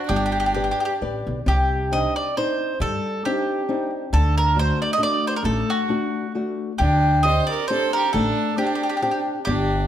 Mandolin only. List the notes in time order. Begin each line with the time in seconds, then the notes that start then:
0.09 G4
0.16 G4
0.26 G4
0.32 G4
0.40 G4
0.46 G4
0.54 G4
0.64 G4
0.71 G4
0.80 G4
0.85 G4
1.48 G4
1.93 D#5
2.16 D5
2.37 C5
2.82 A4
3.25 G4
4.14 A4
4.38 A#4
4.59 C5
4.82 D5
4.93 D#5
5.03 D5
5.27 C5
5.36 A#4
5.45 A4
5.70 F#4
6.78 G4
7.23 D#5
7.47 D5
7.68 C5
7.93 A#4
8.13 A4
8.58 G4
8.67 G4
8.75 G4
8.83 G4
8.89 G4
8.97 G4
9.02 G4
9.11 G4
9.45 G4